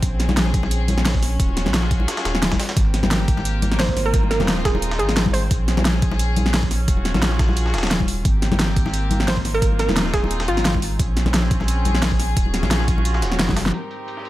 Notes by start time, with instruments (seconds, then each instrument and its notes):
Already playing: string section C4
0.02 sub bass A#1, string section C#4 G#4, kick, closed hi-hat
0.20 snare, closed hi-hat
0.29 snare, muted conga, high conga
0.37 snare, closed hi-hat
0.46 snare
0.54 kick, closed hi-hat
0.63 snare, muted conga
0.71 closed hi-hat
0.88 closed hi-hat, high conga
0.98 snare
1.05 snare, closed hi-hat, open hi-hat
1.15 kick
1.22 snare, closed hi-hat, open hi-hat
1.40 sub bass D#1, string section F4 F#4 G#4, kick, closed hi-hat
1.49 muted conga
1.57 snare, closed hi-hat
1.66 sub bass A#1, snare, muted conga, high conga
1.74 snare, closed hi-hat
1.83 snare
1.91 kick, closed hi-hat
2.00 muted conga
2.08 snare, closed hi-hat
2.17 snare, closed hi-hat
2.25 sub bass D#1, snare, closed hi-hat
2.35 snare
2.42 snare, closed hi-hat
2.52 kick, snare, closed hi-hat, high conga
2.60 snare, closed hi-hat, open hi-hat
2.69 snare, closed hi-hat
2.77 sub bass G#1, string section A#3 C4 G4, kick, closed hi-hat
2.94 snare, closed hi-hat
3.03 snare, muted conga, high conga
3.11 snare, closed hi-hat
3.20 snare
3.28 kick, closed hi-hat
3.37 snare, muted conga
3.45 closed hi-hat
3.62 closed hi-hat, high conga
3.72 snare
3.79 synth pluck C5, snare, closed hi-hat, open hi-hat
3.89 kick
3.97 sub bass G#1, string section D#4 F4, snare, closed hi-hat, open hi-hat
4.06 synth pluck A#4
4.14 kick, closed hi-hat
4.23 muted conga
4.31 synth pluck A#4, snare, closed hi-hat
4.40 sub bass D#1, snare, muted conga, high conga
4.48 snare, closed hi-hat
4.57 snare
4.65 synth pluck G#4, kick, snare, closed hi-hat
4.75 muted conga
4.82 closed hi-hat
4.91 snare, closed hi-hat
4.99 sub bass G#1, synth pluck G#4, closed hi-hat
5.09 snare, closed hi-hat
5.17 snare, closed hi-hat
5.26 kick, high conga
5.33 synth pluck C5, closed hi-hat, open hi-hat
5.51 sub bass A#1, string section C#4 G#4, kick, closed hi-hat
5.68 snare, closed hi-hat
5.77 snare, muted conga, high conga
5.85 snare, closed hi-hat
5.94 snare
6.02 kick, closed hi-hat
6.12 snare, muted conga
6.19 closed hi-hat
6.36 closed hi-hat, high conga
6.46 snare
6.54 snare, closed hi-hat, open hi-hat
6.63 kick
6.71 snare, closed hi-hat, open hi-hat
6.88 sub bass D#1, string section F4 F#4 G#4, kick, closed hi-hat
6.97 muted conga
7.05 snare, closed hi-hat
7.14 sub bass A#1, snare, muted conga, high conga
7.22 snare, closed hi-hat
7.32 snare
7.39 kick, snare, closed hi-hat
7.49 snare, muted conga
7.57 closed hi-hat
7.66 snare
7.74 sub bass D#1, snare, closed hi-hat
7.78 snare, closed hi-hat
7.83 snare, closed hi-hat
7.87 snare, closed hi-hat
7.91 snare, closed hi-hat
8.00 kick, high conga
8.08 closed hi-hat, open hi-hat
8.25 sub bass G#1, string section A#3 C4 G4, kick, closed hi-hat
8.42 snare, closed hi-hat
8.52 snare, muted conga, high conga
8.59 snare, closed hi-hat
8.69 snare
8.76 kick, closed hi-hat
8.86 snare, muted conga
8.93 closed hi-hat
9.11 closed hi-hat, high conga
9.20 snare
9.28 synth pluck C5, snare, closed hi-hat, open hi-hat
9.37 kick
9.45 sub bass G#1, string section C4 D#4 F4, snare, closed hi-hat, open hi-hat
9.54 synth pluck A#4
9.62 kick, closed hi-hat
9.72 muted conga
9.79 synth pluck A#4, snare, closed hi-hat
9.89 sub bass D#1, snare, muted conga, high conga
9.96 snare, closed hi-hat
10.06 snare
10.14 synth pluck G#4, kick, snare, closed hi-hat
10.24 muted conga
10.31 closed hi-hat
10.40 snare, closed hi-hat
10.48 sub bass G#1, synth pluck F4, closed hi-hat
10.57 snare, closed hi-hat
10.65 snare, closed hi-hat
10.74 kick, high conga
10.82 closed hi-hat, open hi-hat
10.99 sub bass A#1, string section C4 C#4 G#4, kick, closed hi-hat
11.17 snare, closed hi-hat
11.26 snare, muted conga, high conga
11.34 snare, closed hi-hat
11.43 snare
11.51 kick, closed hi-hat
11.60 snare, muted conga
11.68 closed hi-hat
11.85 closed hi-hat, high conga
11.95 snare
12.02 snare, closed hi-hat, open hi-hat
12.12 kick
12.19 snare, closed hi-hat, open hi-hat
12.37 sub bass D#1, string section C#4 F4 F#4, kick, closed hi-hat
12.46 muted conga
12.54 snare, closed hi-hat
12.63 sub bass A#1, snare, muted conga, high conga
12.71 snare, closed hi-hat
12.80 snare
12.88 kick, closed hi-hat
12.98 muted conga
13.05 closed hi-hat
13.14 snare
13.22 sub bass D#1, snare, closed hi-hat
13.32 snare
13.39 sub bass F#1, snare, closed hi-hat
13.49 kick, snare, high conga
13.57 snare, closed hi-hat, open hi-hat
13.66 snare
13.74 string section G#2 C4 D#4 G4 A#4, closed hi-hat, crash
13.91 closed hi-hat
14.08 closed hi-hat
14.17 snare
14.25 closed hi-hat